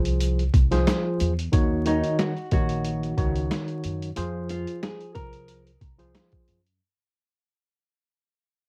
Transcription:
0.00 0.50 C2 medium
0.00 0.42 F3 loud
0.00 0.42 F4 medium
0.00 0.42 G#4 medium
0.00 0.43 C5 loud
0.05 closed hi-hat medium
0.21 closed hi-hat medium
0.21 shaker medium
0.39 closed hi-hat soft
0.54 0.84 C2 loud
0.54 kick loud
0.54 closed hi-hat medium
0.54 shaker medium
0.71 1.32 F3 loud
0.71 1.32 F4 medium
0.71 1.32 G#4 medium
0.71 1.32 C5 loud
0.71 snare soft
0.71 closed hi-hat medium
0.87 snare loud
0.87 snare medium
0.87 closed hi-hat loud
0.87 shaker medium
1.19 1.51 E2 medium
1.19 closed hi-hat medium
1.19 shaker medium
1.39 closed hi-hat medium
1.52 2.00 D#2 loud
1.52 1.83 D#3 medium
1.52 1.83 D#4 medium
1.52 1.83 F#4 medium
1.52 1.84 C#5 loud
1.52 kick loud
1.52 closed hi-hat loud
1.86 2.32 D#3 medium
1.86 2.33 D#4 medium
1.86 2.16 D#4 medium
1.86 2.33 F#4 medium
1.86 2.33 C#5 loud
1.86 closed hi-hat medium
2.04 closed hi-hat soft
2.19 2.49 F#4 medium
2.19 snare loud
2.19 snare medium
2.19 closed hi-hat medium
2.37 closed hi-hat soft
2.51 3.14 A#1 medium
2.51 3.13 D#3 loud
2.51 3.13 D#4 medium
2.51 3.13 F#4 medium
2.51 4.13 F#4 medium
2.51 3.13 C#5 loud
2.51 kick medium
2.51 closed hi-hat medium
2.69 closed hi-hat medium
2.84 closed hi-hat medium
3.03 closed hi-hat soft
3.17 3.48 C#2 loud
3.17 4.09 D#3 medium
3.17 4.09 D#4 medium
3.17 4.09 F#4 medium
3.17 4.10 C#5 loud
3.17 kick medium
3.17 closed hi-hat medium
3.35 closed hi-hat medium
3.51 snare loud
3.51 snare medium
3.51 closed hi-hat loud
3.68 closed hi-hat soft
3.84 4.14 F#2 medium
3.84 closed hi-hat medium
4.03 closed hi-hat medium
4.16 4.64 F2 loud
4.16 5.69 F3 medium
4.16 5.69 F4 medium
4.16 5.70 G#4 medium
4.16 5.70 C5 loud
4.16 closed hi-hat loud
4.49 4.80 F4 medium
4.49 closed hi-hat medium
4.67 closed hi-hat soft
4.83 5.12 G#4 medium
4.83 snare loud
4.83 snare medium
4.83 closed hi-hat medium
5.00 closed hi-hat soft
5.15 5.78 C2 medium
5.15 5.63 A#4 medium
5.15 kick medium
5.15 closed hi-hat medium
5.33 closed hi-hat medium
5.48 closed hi-hat medium
5.67 closed hi-hat soft
5.81 6.12 C2 medium
5.81 kick medium
5.81 closed hi-hat medium
5.98 6.59 F3 medium
5.98 6.59 F4 medium
5.98 6.60 G#4 medium
5.98 6.60 C5 medium
5.98 closed hi-hat medium
6.15 snare loud
6.15 snare medium
6.15 closed hi-hat medium
6.32 kick medium
6.32 closed hi-hat soft
6.48 6.78 F#2 medium
6.48 closed hi-hat medium
6.66 closed hi-hat medium

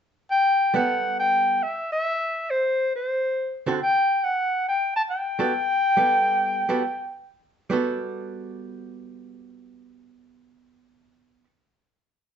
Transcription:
0.31 0.77 G5 medium
0.74 1.61 G3 medium
0.74 1.62 B3 medium
0.74 1.63 A4 medium
0.74 1.19 F#5 medium
1.20 1.64 G5 medium
1.63 1.92 E5 medium
1.92 2.52 E5 loud
2.50 2.93 C5 medium
2.96 3.63 C5 medium
3.66 3.79 D3 medium
3.66 3.79 C4 medium
3.66 3.79 F#4 medium
3.66 3.79 A4 medium
3.83 4.26 G5 medium
4.24 4.67 F#5 medium
4.69 4.95 G5 medium
4.96 5.02 A5 medium
5.11 7.23 G5 loud
5.39 5.52 G3 medium
5.39 5.52 B3 medium
5.39 5.52 F#4 medium
5.39 5.52 A4 medium
5.97 6.64 G3 medium
5.97 6.64 B3 medium
5.97 6.64 A4 medium
6.69 6.82 G3 medium
6.69 6.82 B3 medium
6.69 6.82 F#4 medium
6.69 6.82 A4 medium
7.70 11.43 G3 medium
7.70 11.44 B3 medium
7.70 11.46 F#4 medium
7.70 11.47 A4 medium

